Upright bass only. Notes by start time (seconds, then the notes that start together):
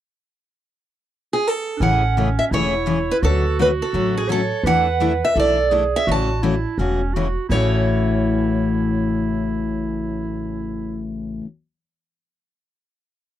1.80 A1
2.51 E1
3.23 D2
3.93 A1
4.63 E2
5.36 B1
6.07 A1
6.78 E1
7.50 A1